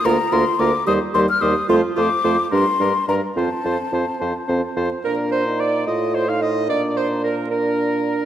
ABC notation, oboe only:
X:1
M:6/8
L:1/16
Q:3/8=73
K:Bb
V:1 name="Oboe"
B2 B2 B2 c2 c2 c2 | c2 c2 c2 B2 B2 B2 | c2 c2 c2 c2 c2 c2 | B2 c2 d2 e2 c f e2 |
d2 c2 B2 B6 |]